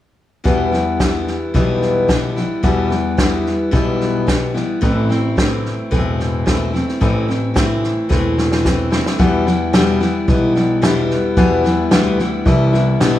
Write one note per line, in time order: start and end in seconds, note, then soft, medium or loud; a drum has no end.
0.44 0.72 E2 medium
0.44 1.32 E2 medium
0.44 0.72 B2 medium
0.44 0.72 E3 medium
0.44 0.72 G3 medium
0.44 0.71 B3 medium
0.44 0.70 E4 medium
0.44 kick medium
0.44 snare soft
0.71 0.98 E3 soft
0.71 0.99 G3 soft
0.71 1.00 B3 soft
0.71 0.99 E4 soft
0.71 snare soft
1.00 1.54 E3 soft
1.00 1.54 G3 medium
1.00 1.54 B3 medium
1.00 1.54 E4 medium
1.00 kick medium
1.00 snare loud
1.00 hi-hat pedal medium
1.27 snare soft
1.54 2.42 B1 medium
1.54 2.09 E2 medium
1.54 2.09 B2 medium
1.54 2.08 E3 medium
1.54 2.08 G3 medium
1.54 2.09 B3 medium
1.54 2.10 E4 medium
1.54 kick medium
1.54 snare soft
1.82 snare soft
2.08 2.36 E3 medium
2.08 2.36 G3 medium
2.08 2.36 B3 medium
2.08 2.35 E4 medium
2.08 kick medium
2.08 snare medium
2.08 hi-hat pedal medium
2.36 2.62 E3 soft
2.36 2.62 G3 soft
2.36 2.62 B3 soft
2.36 2.63 E4 soft
2.36 snare soft
2.63 2.90 E2 medium
2.63 3.51 E2 medium
2.63 2.91 B2 medium
2.63 2.91 E3 medium
2.63 2.90 G3 medium
2.63 2.90 B3 medium
2.63 2.89 E4 medium
2.63 kick medium
2.63 snare soft
2.90 3.16 E3 soft
2.90 3.16 G3 soft
2.90 3.17 B3 soft
2.90 3.17 E4 soft
2.90 snare soft
3.17 3.72 E3 medium
3.17 3.71 G3 medium
3.17 3.71 B3 medium
3.17 3.72 E4 medium
3.17 kick medium
3.17 snare medium
3.17 hi-hat pedal medium
3.46 snare soft
3.71 4.60 B1 medium
3.71 4.27 E2 medium
3.71 4.27 B2 medium
3.71 4.26 E3 medium
3.71 4.26 G3 medium
3.71 4.26 B3 medium
3.71 4.28 E4 medium
3.71 kick medium
3.71 snare soft
4.00 snare soft
4.27 4.54 E3 medium
4.27 4.54 G3 medium
4.27 4.53 B3 medium
4.27 4.53 E4 medium
4.27 kick medium
4.27 snare medium
4.27 hi-hat pedal medium
4.54 4.80 E3 soft
4.54 4.81 G3 soft
4.54 4.82 B3 soft
4.54 4.81 E4 soft
4.54 snare soft
4.81 5.70 A1 medium
4.81 5.09 A2 medium
4.81 5.09 E3 medium
4.81 5.09 A3 medium
4.81 5.09 C4 medium
4.81 5.08 E4 medium
4.81 kick medium
4.81 snare soft
5.09 5.36 A3 soft
5.09 5.37 C4 soft
5.09 5.37 E4 soft
5.09 snare soft
5.36 5.91 E3 soft
5.36 5.90 A3 medium
5.36 5.91 C4 medium
5.36 5.92 E4 medium
5.36 kick medium
5.36 snare loud
5.36 hi-hat pedal medium
5.65 snare soft
5.91 6.79 E1 medium
5.91 6.46 A2 medium
5.91 6.45 E3 medium
5.91 6.45 A3 medium
5.91 6.45 C4 medium
5.91 6.47 E4 medium
5.91 kick medium
5.91 snare soft
6.20 snare soft
6.46 6.73 E3 medium
6.46 6.73 A3 medium
6.46 6.73 C4 medium
6.46 6.72 E4 medium
6.46 kick medium
6.46 snare medium
6.46 hi-hat pedal medium
6.73 7.00 A3 soft
6.73 7.00 C4 soft
6.73 7.01 E4 soft
6.73 snare soft
6.88 snare soft
7.01 7.88 A1 medium
7.01 7.28 A2 medium
7.01 7.28 E3 medium
7.01 7.28 A3 medium
7.01 7.27 C4 medium
7.01 7.27 E4 medium
7.01 kick medium
7.01 snare soft
7.28 7.54 A3 soft
7.28 7.54 C4 soft
7.28 7.55 E4 soft
7.28 snare soft
7.54 8.08 E3 medium
7.54 8.08 A3 medium
7.54 8.09 C4 medium
7.54 8.09 E4 medium
7.54 kick medium
7.54 snare medium
7.54 hi-hat pedal medium
7.84 snare soft
8.09 8.97 E1 medium
8.09 8.64 A2 medium
8.09 8.62 E3 medium
8.09 8.63 A3 medium
8.09 8.64 C4 medium
8.09 8.64 E4 medium
8.09 kick medium
8.09 snare soft
8.38 snare medium
8.52 snare medium
8.64 8.91 E3 medium
8.64 8.91 A3 medium
8.64 8.90 C4 medium
8.64 8.89 E4 medium
8.64 kick medium
8.64 snare medium
8.64 hi-hat pedal medium
8.90 9.19 A3 soft
8.90 9.19 C4 soft
8.90 9.18 E4 soft
8.90 snare medium
9.06 snare medium
9.19 9.46 E2 medium
9.19 10.06 E2 medium
9.19 9.46 B2 medium
9.19 9.46 E3 medium
9.19 9.46 G3 medium
9.19 9.46 B3 medium
9.19 9.45 E4 medium
9.19 kick medium
9.19 snare soft
9.47 9.73 E3 soft
9.47 9.73 G3 soft
9.47 9.73 B3 soft
9.47 9.74 E4 medium
9.47 snare soft
9.73 10.01 E2 medium
9.73 10.01 B2 medium
9.73 10.01 E3 medium
9.73 10.00 G3 medium
9.73 10.00 B3 medium
9.73 9.99 E4 medium
9.73 snare loud
9.73 hi-hat pedal medium
10.00 10.26 E3 soft
10.00 10.27 G3 soft
10.00 10.28 B3 medium
10.00 10.28 E4 medium
10.00 snare soft
10.28 11.15 B1 medium
10.28 10.55 E3 medium
10.28 10.55 G3 medium
10.28 10.55 B3 medium
10.28 10.54 E4 medium
10.28 kick medium
10.28 snare soft
10.55 10.81 E3 soft
10.55 10.81 G3 soft
10.55 10.81 B3 soft
10.55 10.82 E4 soft
10.55 snare soft
10.82 11.35 E2 medium
10.82 11.36 B2 medium
10.82 11.37 E3 medium
10.82 11.36 G3 medium
10.82 11.37 B3 medium
10.82 11.38 E4 medium
10.82 snare loud
10.82 hi-hat pedal medium
11.10 snare soft
11.37 11.64 E2 medium
11.37 11.80 E2 medium
11.37 11.64 B2 medium
11.37 11.64 E3 medium
11.37 11.64 G3 medium
11.37 11.64 B3 medium
11.37 11.63 E4 medium
11.37 kick medium
11.37 snare soft
11.64 11.90 E3 soft
11.64 11.90 G3 soft
11.64 11.91 B3 soft
11.64 11.91 E4 soft
11.64 snare soft
11.91 12.38 D2 medium
11.91 12.18 E2 medium
11.91 12.19 B2 medium
11.91 12.19 E3 medium
11.91 12.19 G3 medium
11.91 12.19 B3 medium
11.91 12.18 E4 medium
11.91 snare loud
11.91 hi-hat pedal medium
12.19 12.44 E3 soft
12.19 12.45 G3 soft
12.19 12.46 B3 soft
12.19 12.46 E4 soft
12.19 snare soft
12.45 12.92 C2 medium
12.45 12.73 E3 medium
12.45 12.73 G3 medium
12.45 12.73 B3 medium
12.45 12.72 E4 medium
12.45 kick medium
12.45 snare soft
12.73 13.00 E3 soft
12.73 13.00 G3 soft
12.73 13.01 B3 soft
12.73 13.00 E4 medium
12.73 snare soft
13.01 13.19 B1 medium
13.01 13.19 E2 medium
13.01 13.19 B2 medium
13.01 13.19 E3 medium
13.01 13.19 G3 medium
13.01 13.19 B3 medium
13.01 13.19 E4 medium
13.01 snare medium
13.01 hi-hat pedal medium